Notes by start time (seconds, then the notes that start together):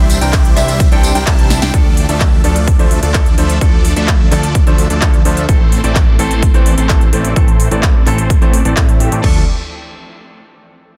Already playing: C2 G3 D4 E4 C5 E5
0.10 open hi-hat, tambourine
0.21 C2 E3 G3 C4 D4 E4 A#4 C5 G5, closed hi-hat, tambourine
0.33 kick, clap, closed hi-hat, ride
0.45 closed hi-hat
0.56 C2 E3 G3 C4 D4 E4 G4 C5 E5, clap, open hi-hat, tambourine
0.68 closed hi-hat, tambourine
0.80 kick, closed hi-hat, ride, tambourine
0.91 C2 E3 G3 C4 D4 E4 A4 C5 G5, closed hi-hat
1.03 open hi-hat, tambourine
1.15 C2 E3 G3 C4 D4 E4 A#4 C5 G5, closed hi-hat, tambourine
1.27 C2 G3 D4 A5, kick, clap, closed hi-hat, ride
1.39 closed hi-hat
1.50 E3 C4 D4 E4, snare, open hi-hat, tambourine
1.62 C2 G3 D4 E4 C5 G5, snare, closed hi-hat, tambourine
1.73 D2 F3 A3 D4 A4 D5, kick, closed hi-hat
1.97 open hi-hat
2.08 D2 F3 A3 D4 A4 D5 E5, closed hi-hat
2.20 kick, clap, closed hi-hat
2.44 D2 F3 A3 D4 A4 D5, open hi-hat
2.56 closed hi-hat
2.68 kick, closed hi-hat
2.79 D2 F3 A3 D4 A4 C5 E5, closed hi-hat
2.91 open hi-hat
3.03 D2 F3 A3 D4 A4 D5, closed hi-hat
3.14 F3 A3 D4 A4, kick, clap, closed hi-hat
3.26 closed hi-hat
3.37 D2 F3 A3 D4 A4 C5 E5, open hi-hat
3.50 closed hi-hat
3.61 D2 F3 A3 D4 A4, kick, closed hi-hat
3.85 open hi-hat
3.96 D2 F3 A3 D4 A4 D5 E5, closed hi-hat
4.08 kick, clap, closed hi-hat
4.31 D2 F3 A3 D4 A4 D5, clap, open hi-hat
4.43 closed hi-hat
4.55 kick, closed hi-hat
4.66 D2 F3 A3 D4 A4 C5 E5, closed hi-hat
4.78 open hi-hat
4.90 D2 F3 A3 D4 A4 D5, closed hi-hat
5.01 F3 A3 D4 A4, kick, clap, closed hi-hat
5.14 closed hi-hat
5.25 D2 F3 A3 D4 A4 C5 E5, open hi-hat
5.37 closed hi-hat
5.48 A1 E3 A3 C4 A4, kick, closed hi-hat
5.72 open hi-hat
5.83 A1 E3 A3 C4 A4 D5, closed hi-hat
5.95 kick, clap, closed hi-hat
6.18 A1 E3 A3 C4 A4 C5, open hi-hat
6.31 closed hi-hat
6.43 kick, closed hi-hat
6.54 A1 E3 A3 C4 A4 C5 D5, closed hi-hat
6.66 open hi-hat
6.78 A1 E3 A3 C4 A4 C5, closed hi-hat
6.89 E3 A3 C4 A4, kick, clap, closed hi-hat
7.01 closed hi-hat
7.12 A1 E3 A3 C4 A4 C5 D5, open hi-hat
7.25 closed hi-hat
7.36 A1 E3 A3 C4 A4 C5, kick, closed hi-hat
7.48 closed hi-hat
7.60 open hi-hat
7.71 A1 E3 A3 C4 A4 D5, closed hi-hat
7.83 kick, clap, closed hi-hat
8.06 A1 E3 A3 C4 A4 C5, clap, open hi-hat
8.18 closed hi-hat
8.30 kick, closed hi-hat
8.41 A1 E3 A3 C4 A4 C5 D5, closed hi-hat
8.53 open hi-hat
8.65 A1 E3 A3 C4 A4 D5, closed hi-hat
8.77 A2 E3 C4, kick, clap, closed hi-hat
8.89 closed hi-hat
9.00 E3 A3 C4 G4, open hi-hat
9.12 A2 E3 A3 C4 A4 D5, closed hi-hat
9.22 D2 F3 A3 D4 A4 D5, kick, floor tom, crash